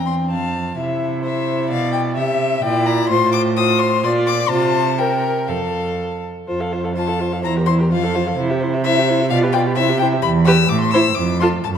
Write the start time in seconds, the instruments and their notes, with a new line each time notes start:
Already playing: cello E2, viola C4, violin G5
0.06 violin C6
0.30 cello F2, violin F5 A5
0.78 cello C3, viola E4, violin E5
1.23 violin C5 E5
1.70 cello B2, violin D5 F5
1.92 violin G5
2.16 cello C3, viola G4, violin E5
2.62 cello A#2, viola E4, violin D5 G5
2.86 violin A#5
3.09 cello A2, viola F4, violin C5 C6
3.32 violin D6
3.57 viola F4, violin C5 D#6
3.79 violin C6
4.03 cello A#2, viola F4, violin D5 C6
4.27 violin D6
4.49 cello C3, viola F4, violin C5 A5
4.98 violin A#4 G5, viola A#4
5.48 cello F2, violin A4 F5, viola A4
6.48 cello F2, viola F4, violin C5
6.60 viola A4, violin F5
6.73 viola F4, violin C5
6.84 viola A4, violin F5
6.95 viola F4, violin C5 A5
7.08 viola A4, violin F5
7.20 viola F4, violin C5
7.32 viola A4, violin F5
7.44 cello E2, viola E4, violin C5 A#5
7.57 viola G4, violin A#4
7.66 viola E4, violin C5 C6
7.79 viola G4, violin A#4
7.91 cello F2, viola F4, violin C5 F5
8.02 viola A4, violin F5
8.15 viola F4, violin C5
8.26 viola A4, violin F5
8.37 cello C3, viola E4, violin C5
8.49 viola G4, violin E5
8.60 viola E4, violin C5
8.73 viola G4, violin E5
8.84 viola E4, violin C5 E5
8.96 viola G4, violin E5
9.08 viola E4, violin C5
9.20 viola G4, violin E5
9.30 cello B2, viola F4, violin D5 F5
9.43 viola G4, violin B4
9.52 viola F4, violin D5 G5
9.66 viola G4, violin B4
9.75 cello C3, viola E4, violin C5 E5
9.89 viola G4, violin E5
9.99 viola E4, violin C5 G5
10.13 viola G4, violin E5
10.22 cello E2, violin B5
10.45 viola G4, violin B4 E6
10.69 cello A2, violin D6
10.80 violin C6
10.91 viola E4, violin C5 E6
11.15 cello F2, violin D6
11.40 viola F4, violin A4 C6
11.64 cello F#2, violin A5